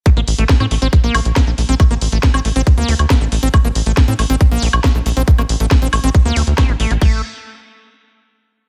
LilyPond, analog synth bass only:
\new Staff \with { instrumentName = "Analog synth bass" } { \clef bass \time 4/4 \key a \phrygian \tempo 4 = 138 r16 a,,16 a,,16 a,,16 r16 a,16 a,,16 a,,16 r16 bes,,16 bes,,16 bes,,16 r16 bes,,16 bes,,16 bes,,16 | r16 a,,16 a,,16 a,,16 r16 a,,16 a,,16 a,,16 r16 d,16 d,16 d,16 r16 a,,16 a,,16 a,,16 | r16 a,,16 a,,16 a,,16 r16 a,16 a,,16 a,,16 r16 bes,,16 bes,,16 bes,,16 r16 bes,,16 bes,,16 bes,,16 | r16 a,,16 a,,16 a,,16 r16 a,,16 a,,16 a,,16 r16 d,16 d,16 d,16 r16 a,,16 a,,16 a,,16 |
a,,8 r2. r8 | }